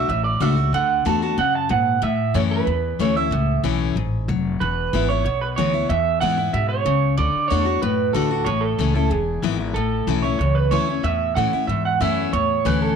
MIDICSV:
0, 0, Header, 1, 5, 480
1, 0, Start_track
1, 0, Key_signature, 3, "major"
1, 0, Tempo, 322061
1, 1091, Time_signature, 4, 2, 24, 8
1, 19311, End_track
2, 0, Start_track
2, 0, Title_t, "Clean electric guitar"
2, 0, Program_c, 0, 27
2, 133, Note_on_c, 0, 76, 93
2, 356, Note_off_c, 0, 76, 0
2, 362, Note_on_c, 0, 74, 90
2, 619, Note_off_c, 0, 74, 0
2, 619, Note_on_c, 0, 76, 97
2, 1101, Note_off_c, 0, 76, 0
2, 1107, Note_on_c, 0, 78, 114
2, 1582, Note_off_c, 0, 78, 0
2, 1588, Note_on_c, 0, 81, 99
2, 1804, Note_off_c, 0, 81, 0
2, 1843, Note_on_c, 0, 81, 100
2, 2063, Note_off_c, 0, 81, 0
2, 2069, Note_on_c, 0, 78, 106
2, 2308, Note_off_c, 0, 78, 0
2, 2316, Note_on_c, 0, 81, 107
2, 2537, Note_off_c, 0, 81, 0
2, 2542, Note_on_c, 0, 78, 103
2, 2985, Note_off_c, 0, 78, 0
2, 3028, Note_on_c, 0, 76, 109
2, 3505, Note_on_c, 0, 73, 94
2, 3516, Note_off_c, 0, 76, 0
2, 3579, Note_off_c, 0, 73, 0
2, 3743, Note_on_c, 0, 71, 87
2, 4481, Note_off_c, 0, 71, 0
2, 4481, Note_on_c, 0, 73, 88
2, 4711, Note_off_c, 0, 73, 0
2, 4717, Note_on_c, 0, 76, 83
2, 5377, Note_off_c, 0, 76, 0
2, 6861, Note_on_c, 0, 71, 98
2, 7529, Note_off_c, 0, 71, 0
2, 7582, Note_on_c, 0, 73, 99
2, 7801, Note_off_c, 0, 73, 0
2, 7819, Note_on_c, 0, 73, 92
2, 8064, Note_off_c, 0, 73, 0
2, 8070, Note_on_c, 0, 71, 94
2, 8145, Note_off_c, 0, 71, 0
2, 8291, Note_on_c, 0, 73, 99
2, 8781, Note_off_c, 0, 73, 0
2, 8787, Note_on_c, 0, 76, 115
2, 9242, Note_off_c, 0, 76, 0
2, 9248, Note_on_c, 0, 78, 105
2, 9699, Note_off_c, 0, 78, 0
2, 9739, Note_on_c, 0, 76, 100
2, 9960, Note_off_c, 0, 76, 0
2, 9966, Note_on_c, 0, 73, 103
2, 10688, Note_off_c, 0, 73, 0
2, 10694, Note_on_c, 0, 74, 118
2, 11141, Note_off_c, 0, 74, 0
2, 11147, Note_on_c, 0, 73, 100
2, 11607, Note_off_c, 0, 73, 0
2, 11652, Note_on_c, 0, 71, 94
2, 12114, Note_off_c, 0, 71, 0
2, 12120, Note_on_c, 0, 69, 95
2, 12588, Note_on_c, 0, 73, 106
2, 12623, Note_off_c, 0, 69, 0
2, 12830, Note_on_c, 0, 69, 91
2, 12850, Note_off_c, 0, 73, 0
2, 13314, Note_off_c, 0, 69, 0
2, 13332, Note_on_c, 0, 69, 85
2, 13561, Note_off_c, 0, 69, 0
2, 13561, Note_on_c, 0, 68, 79
2, 14048, Note_off_c, 0, 68, 0
2, 14518, Note_on_c, 0, 69, 100
2, 15195, Note_off_c, 0, 69, 0
2, 15238, Note_on_c, 0, 73, 88
2, 15468, Note_off_c, 0, 73, 0
2, 15486, Note_on_c, 0, 73, 97
2, 15713, Note_off_c, 0, 73, 0
2, 15723, Note_on_c, 0, 71, 89
2, 15962, Note_on_c, 0, 73, 94
2, 15976, Note_off_c, 0, 71, 0
2, 16414, Note_off_c, 0, 73, 0
2, 16452, Note_on_c, 0, 76, 117
2, 16916, Note_off_c, 0, 76, 0
2, 16922, Note_on_c, 0, 78, 100
2, 17374, Note_off_c, 0, 78, 0
2, 17399, Note_on_c, 0, 76, 106
2, 17653, Note_off_c, 0, 76, 0
2, 17667, Note_on_c, 0, 78, 102
2, 17892, Note_off_c, 0, 78, 0
2, 17898, Note_on_c, 0, 76, 105
2, 18370, Note_off_c, 0, 76, 0
2, 18376, Note_on_c, 0, 73, 109
2, 18868, Note_off_c, 0, 73, 0
2, 18871, Note_on_c, 0, 71, 89
2, 19085, Note_off_c, 0, 71, 0
2, 19108, Note_on_c, 0, 69, 90
2, 19311, Note_off_c, 0, 69, 0
2, 19311, End_track
3, 0, Start_track
3, 0, Title_t, "Steel-string acoustic guitar"
3, 0, Program_c, 1, 25
3, 143, Note_on_c, 1, 45, 90
3, 603, Note_on_c, 1, 50, 95
3, 614, Note_on_c, 1, 57, 88
3, 626, Note_on_c, 1, 66, 93
3, 627, Note_on_c, 1, 62, 87
3, 819, Note_off_c, 1, 66, 0
3, 837, Note_on_c, 1, 66, 61
3, 838, Note_off_c, 1, 50, 0
3, 843, Note_off_c, 1, 57, 0
3, 844, Note_off_c, 1, 62, 0
3, 862, Note_on_c, 1, 62, 48
3, 1050, Note_off_c, 1, 45, 0
3, 1075, Note_off_c, 1, 66, 0
3, 1088, Note_off_c, 1, 62, 0
3, 1105, Note_on_c, 1, 50, 97
3, 1548, Note_off_c, 1, 50, 0
3, 1566, Note_on_c, 1, 50, 84
3, 1576, Note_on_c, 1, 57, 81
3, 1581, Note_on_c, 1, 62, 84
3, 1586, Note_on_c, 1, 66, 94
3, 1800, Note_off_c, 1, 50, 0
3, 1802, Note_off_c, 1, 66, 0
3, 1805, Note_off_c, 1, 57, 0
3, 1807, Note_off_c, 1, 62, 0
3, 1820, Note_on_c, 1, 66, 68
3, 1833, Note_on_c, 1, 62, 51
3, 2047, Note_off_c, 1, 66, 0
3, 2052, Note_on_c, 1, 49, 87
3, 2054, Note_off_c, 1, 62, 0
3, 2509, Note_off_c, 1, 49, 0
3, 2523, Note_on_c, 1, 44, 87
3, 2985, Note_off_c, 1, 44, 0
3, 3006, Note_on_c, 1, 45, 97
3, 3491, Note_on_c, 1, 52, 87
3, 3499, Note_on_c, 1, 57, 87
3, 3504, Note_on_c, 1, 61, 98
3, 3515, Note_on_c, 1, 64, 92
3, 3923, Note_off_c, 1, 45, 0
3, 3949, Note_off_c, 1, 52, 0
3, 3953, Note_off_c, 1, 57, 0
3, 3956, Note_off_c, 1, 61, 0
3, 3961, Note_off_c, 1, 64, 0
3, 3980, Note_on_c, 1, 40, 81
3, 4463, Note_on_c, 1, 52, 84
3, 4473, Note_on_c, 1, 57, 94
3, 4489, Note_on_c, 1, 61, 96
3, 4491, Note_on_c, 1, 64, 91
3, 4690, Note_off_c, 1, 52, 0
3, 4695, Note_off_c, 1, 57, 0
3, 4703, Note_off_c, 1, 61, 0
3, 4704, Note_off_c, 1, 64, 0
3, 4721, Note_on_c, 1, 64, 67
3, 4740, Note_on_c, 1, 61, 53
3, 4890, Note_off_c, 1, 40, 0
3, 4939, Note_off_c, 1, 64, 0
3, 4949, Note_off_c, 1, 61, 0
3, 4951, Note_on_c, 1, 45, 96
3, 5419, Note_on_c, 1, 52, 86
3, 5420, Note_on_c, 1, 57, 97
3, 5428, Note_on_c, 1, 61, 95
3, 5440, Note_on_c, 1, 64, 83
3, 5857, Note_off_c, 1, 45, 0
3, 5874, Note_off_c, 1, 52, 0
3, 5875, Note_off_c, 1, 57, 0
3, 5879, Note_off_c, 1, 61, 0
3, 5885, Note_off_c, 1, 64, 0
3, 5915, Note_on_c, 1, 44, 82
3, 6362, Note_off_c, 1, 44, 0
3, 6393, Note_on_c, 1, 54, 86
3, 6841, Note_off_c, 1, 54, 0
3, 6876, Note_on_c, 1, 40, 89
3, 7349, Note_on_c, 1, 52, 84
3, 7355, Note_on_c, 1, 56, 83
3, 7365, Note_on_c, 1, 59, 90
3, 7375, Note_on_c, 1, 64, 91
3, 7574, Note_off_c, 1, 52, 0
3, 7576, Note_off_c, 1, 64, 0
3, 7577, Note_off_c, 1, 56, 0
3, 7582, Note_off_c, 1, 59, 0
3, 7594, Note_on_c, 1, 64, 64
3, 7617, Note_on_c, 1, 59, 47
3, 7779, Note_off_c, 1, 40, 0
3, 7816, Note_off_c, 1, 64, 0
3, 7828, Note_off_c, 1, 59, 0
3, 7834, Note_on_c, 1, 47, 83
3, 8310, Note_on_c, 1, 56, 86
3, 8312, Note_on_c, 1, 52, 90
3, 8323, Note_on_c, 1, 59, 97
3, 8336, Note_on_c, 1, 64, 104
3, 8529, Note_off_c, 1, 64, 0
3, 8534, Note_off_c, 1, 56, 0
3, 8535, Note_off_c, 1, 52, 0
3, 8541, Note_off_c, 1, 59, 0
3, 8547, Note_on_c, 1, 64, 59
3, 8574, Note_on_c, 1, 59, 46
3, 8738, Note_off_c, 1, 47, 0
3, 8773, Note_off_c, 1, 64, 0
3, 8786, Note_off_c, 1, 59, 0
3, 8792, Note_on_c, 1, 40, 95
3, 9259, Note_on_c, 1, 52, 84
3, 9267, Note_on_c, 1, 56, 87
3, 9278, Note_on_c, 1, 59, 91
3, 9287, Note_on_c, 1, 64, 93
3, 9483, Note_off_c, 1, 64, 0
3, 9489, Note_off_c, 1, 52, 0
3, 9493, Note_off_c, 1, 56, 0
3, 9498, Note_off_c, 1, 59, 0
3, 9500, Note_on_c, 1, 64, 65
3, 9526, Note_on_c, 1, 59, 52
3, 9697, Note_off_c, 1, 40, 0
3, 9730, Note_off_c, 1, 64, 0
3, 9742, Note_off_c, 1, 59, 0
3, 9745, Note_on_c, 1, 47, 88
3, 10198, Note_off_c, 1, 47, 0
3, 10220, Note_on_c, 1, 49, 89
3, 10675, Note_off_c, 1, 49, 0
3, 10694, Note_on_c, 1, 50, 96
3, 11164, Note_off_c, 1, 50, 0
3, 11182, Note_on_c, 1, 50, 90
3, 11188, Note_on_c, 1, 57, 86
3, 11201, Note_on_c, 1, 62, 97
3, 11201, Note_on_c, 1, 66, 91
3, 11385, Note_off_c, 1, 66, 0
3, 11403, Note_on_c, 1, 66, 64
3, 11410, Note_off_c, 1, 50, 0
3, 11413, Note_off_c, 1, 57, 0
3, 11413, Note_off_c, 1, 62, 0
3, 11431, Note_on_c, 1, 62, 49
3, 11640, Note_off_c, 1, 66, 0
3, 11655, Note_off_c, 1, 62, 0
3, 11662, Note_on_c, 1, 45, 88
3, 12138, Note_on_c, 1, 50, 90
3, 12140, Note_on_c, 1, 57, 92
3, 12153, Note_on_c, 1, 62, 98
3, 12157, Note_on_c, 1, 66, 101
3, 12362, Note_off_c, 1, 66, 0
3, 12368, Note_off_c, 1, 50, 0
3, 12369, Note_off_c, 1, 57, 0
3, 12375, Note_off_c, 1, 62, 0
3, 12380, Note_on_c, 1, 66, 65
3, 12401, Note_on_c, 1, 62, 53
3, 12571, Note_off_c, 1, 45, 0
3, 12609, Note_off_c, 1, 66, 0
3, 12615, Note_on_c, 1, 45, 99
3, 12620, Note_off_c, 1, 62, 0
3, 13098, Note_on_c, 1, 52, 84
3, 13109, Note_on_c, 1, 57, 84
3, 13120, Note_on_c, 1, 61, 88
3, 13123, Note_on_c, 1, 64, 97
3, 13325, Note_off_c, 1, 64, 0
3, 13327, Note_off_c, 1, 52, 0
3, 13333, Note_off_c, 1, 57, 0
3, 13339, Note_off_c, 1, 61, 0
3, 13343, Note_on_c, 1, 64, 66
3, 13365, Note_on_c, 1, 61, 50
3, 13527, Note_off_c, 1, 45, 0
3, 13570, Note_off_c, 1, 64, 0
3, 13576, Note_on_c, 1, 40, 89
3, 13581, Note_off_c, 1, 61, 0
3, 14056, Note_on_c, 1, 52, 89
3, 14062, Note_on_c, 1, 56, 90
3, 14069, Note_on_c, 1, 59, 86
3, 14070, Note_on_c, 1, 64, 102
3, 14274, Note_off_c, 1, 64, 0
3, 14286, Note_off_c, 1, 52, 0
3, 14289, Note_off_c, 1, 56, 0
3, 14292, Note_on_c, 1, 64, 58
3, 14293, Note_off_c, 1, 59, 0
3, 14315, Note_on_c, 1, 59, 45
3, 14487, Note_off_c, 1, 40, 0
3, 14524, Note_off_c, 1, 64, 0
3, 14536, Note_off_c, 1, 59, 0
3, 14543, Note_on_c, 1, 45, 92
3, 15016, Note_on_c, 1, 52, 91
3, 15017, Note_on_c, 1, 57, 89
3, 15030, Note_on_c, 1, 61, 85
3, 15030, Note_on_c, 1, 64, 92
3, 15242, Note_off_c, 1, 64, 0
3, 15246, Note_off_c, 1, 52, 0
3, 15247, Note_off_c, 1, 57, 0
3, 15253, Note_off_c, 1, 61, 0
3, 15260, Note_on_c, 1, 64, 66
3, 15282, Note_on_c, 1, 61, 47
3, 15451, Note_off_c, 1, 45, 0
3, 15488, Note_off_c, 1, 64, 0
3, 15499, Note_off_c, 1, 61, 0
3, 15512, Note_on_c, 1, 40, 89
3, 15964, Note_on_c, 1, 52, 90
3, 15975, Note_on_c, 1, 57, 86
3, 15982, Note_on_c, 1, 61, 97
3, 15985, Note_on_c, 1, 64, 95
3, 16199, Note_off_c, 1, 52, 0
3, 16205, Note_off_c, 1, 57, 0
3, 16209, Note_off_c, 1, 61, 0
3, 16210, Note_off_c, 1, 64, 0
3, 16228, Note_on_c, 1, 64, 65
3, 16246, Note_on_c, 1, 61, 49
3, 16415, Note_off_c, 1, 40, 0
3, 16451, Note_off_c, 1, 64, 0
3, 16459, Note_on_c, 1, 45, 96
3, 16460, Note_off_c, 1, 61, 0
3, 16938, Note_on_c, 1, 52, 80
3, 16947, Note_on_c, 1, 57, 89
3, 16957, Note_on_c, 1, 61, 88
3, 16962, Note_on_c, 1, 64, 96
3, 17166, Note_off_c, 1, 52, 0
3, 17166, Note_off_c, 1, 64, 0
3, 17170, Note_off_c, 1, 57, 0
3, 17176, Note_off_c, 1, 61, 0
3, 17184, Note_on_c, 1, 64, 70
3, 17203, Note_on_c, 1, 61, 52
3, 17368, Note_off_c, 1, 45, 0
3, 17409, Note_off_c, 1, 64, 0
3, 17419, Note_off_c, 1, 61, 0
3, 17429, Note_on_c, 1, 40, 81
3, 17892, Note_on_c, 1, 52, 92
3, 17900, Note_on_c, 1, 57, 84
3, 17911, Note_on_c, 1, 61, 98
3, 17912, Note_on_c, 1, 64, 92
3, 18332, Note_off_c, 1, 40, 0
3, 18348, Note_off_c, 1, 52, 0
3, 18352, Note_off_c, 1, 57, 0
3, 18358, Note_off_c, 1, 61, 0
3, 18358, Note_off_c, 1, 64, 0
3, 18383, Note_on_c, 1, 45, 92
3, 18854, Note_on_c, 1, 52, 84
3, 18862, Note_on_c, 1, 57, 89
3, 18870, Note_on_c, 1, 61, 91
3, 18875, Note_on_c, 1, 64, 91
3, 19289, Note_off_c, 1, 45, 0
3, 19309, Note_off_c, 1, 52, 0
3, 19311, Note_off_c, 1, 57, 0
3, 19311, Note_off_c, 1, 61, 0
3, 19311, Note_off_c, 1, 64, 0
3, 19311, End_track
4, 0, Start_track
4, 0, Title_t, "Upright bass"
4, 0, Program_c, 2, 32
4, 131, Note_on_c, 2, 33, 91
4, 597, Note_off_c, 2, 33, 0
4, 603, Note_on_c, 2, 37, 98
4, 1073, Note_off_c, 2, 37, 0
4, 1082, Note_on_c, 2, 38, 89
4, 1553, Note_off_c, 2, 38, 0
4, 1574, Note_on_c, 2, 40, 103
4, 2039, Note_off_c, 2, 40, 0
4, 2050, Note_on_c, 2, 42, 85
4, 2518, Note_off_c, 2, 42, 0
4, 2538, Note_on_c, 2, 46, 94
4, 3002, Note_off_c, 2, 46, 0
4, 3016, Note_on_c, 2, 45, 92
4, 3481, Note_off_c, 2, 45, 0
4, 3491, Note_on_c, 2, 42, 98
4, 3959, Note_off_c, 2, 42, 0
4, 3975, Note_on_c, 2, 40, 87
4, 4441, Note_off_c, 2, 40, 0
4, 4456, Note_on_c, 2, 38, 87
4, 4922, Note_off_c, 2, 38, 0
4, 4930, Note_on_c, 2, 37, 92
4, 5399, Note_off_c, 2, 37, 0
4, 5417, Note_on_c, 2, 35, 97
4, 5883, Note_off_c, 2, 35, 0
4, 5898, Note_on_c, 2, 33, 90
4, 6363, Note_off_c, 2, 33, 0
4, 6382, Note_on_c, 2, 29, 95
4, 6845, Note_off_c, 2, 29, 0
4, 6870, Note_on_c, 2, 28, 91
4, 7330, Note_off_c, 2, 28, 0
4, 7350, Note_on_c, 2, 32, 99
4, 7810, Note_off_c, 2, 32, 0
4, 7827, Note_on_c, 2, 35, 79
4, 8289, Note_off_c, 2, 35, 0
4, 8315, Note_on_c, 2, 38, 98
4, 8772, Note_off_c, 2, 38, 0
4, 8783, Note_on_c, 2, 40, 94
4, 9246, Note_off_c, 2, 40, 0
4, 9263, Note_on_c, 2, 44, 100
4, 9726, Note_off_c, 2, 44, 0
4, 9739, Note_on_c, 2, 44, 88
4, 10204, Note_off_c, 2, 44, 0
4, 10212, Note_on_c, 2, 37, 88
4, 10681, Note_off_c, 2, 37, 0
4, 10703, Note_on_c, 2, 38, 92
4, 10924, Note_off_c, 2, 38, 0
4, 11192, Note_on_c, 2, 40, 99
4, 11650, Note_off_c, 2, 40, 0
4, 11664, Note_on_c, 2, 42, 83
4, 12126, Note_off_c, 2, 42, 0
4, 12140, Note_on_c, 2, 38, 93
4, 12600, Note_off_c, 2, 38, 0
4, 12609, Note_on_c, 2, 33, 99
4, 13078, Note_off_c, 2, 33, 0
4, 13093, Note_on_c, 2, 37, 100
4, 13560, Note_off_c, 2, 37, 0
4, 13568, Note_on_c, 2, 28, 88
4, 14037, Note_off_c, 2, 28, 0
4, 14044, Note_on_c, 2, 32, 97
4, 14515, Note_off_c, 2, 32, 0
4, 14521, Note_on_c, 2, 33, 89
4, 14993, Note_off_c, 2, 33, 0
4, 15010, Note_on_c, 2, 35, 97
4, 15478, Note_off_c, 2, 35, 0
4, 15484, Note_on_c, 2, 37, 92
4, 15951, Note_off_c, 2, 37, 0
4, 15960, Note_on_c, 2, 38, 92
4, 16432, Note_off_c, 2, 38, 0
4, 16443, Note_on_c, 2, 40, 93
4, 16914, Note_off_c, 2, 40, 0
4, 16935, Note_on_c, 2, 45, 101
4, 17157, Note_off_c, 2, 45, 0
4, 17400, Note_on_c, 2, 44, 92
4, 17872, Note_off_c, 2, 44, 0
4, 17894, Note_on_c, 2, 42, 99
4, 18359, Note_off_c, 2, 42, 0
4, 18370, Note_on_c, 2, 40, 88
4, 18836, Note_off_c, 2, 40, 0
4, 18856, Note_on_c, 2, 38, 103
4, 19311, Note_off_c, 2, 38, 0
4, 19311, End_track
5, 0, Start_track
5, 0, Title_t, "Muted upright bass strokes"
5, 10947, Note_on_c, 9, 29, 43
5, 11096, Note_off_c, 9, 29, 0
5, 17180, Note_on_c, 9, 29, 44
5, 17329, Note_off_c, 9, 29, 0
5, 19311, End_track
0, 0, End_of_file